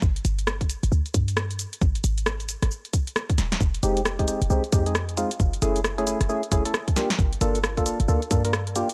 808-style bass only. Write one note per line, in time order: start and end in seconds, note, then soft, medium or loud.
0.02 0.20 G1 loud
0.25 0.77 G1 loud
0.83 0.89 G1 medium
0.92 1.02 D2 medium
1.14 1.66 G2 medium
1.81 1.99 G#1 loud
2.04 2.56 G#1 loud
2.62 2.68 G#1 medium
3.38 3.56 D#1 loud
3.61 3.78 F1 loud
3.83 4.35 F1 loud
4.42 4.48 F1 medium
4.50 4.60 C2 medium
4.73 5.25 F2 medium
5.40 5.57 F#1 loud
5.62 6.14 F#1 loud
6.21 6.27 F#1 medium
6.52 6.61 F#1 medium
7.19 7.36 G1 loud
7.41 7.93 G1 loud
8.00 8.06 G1 medium
8.08 8.18 D2 medium
8.31 8.83 G2 medium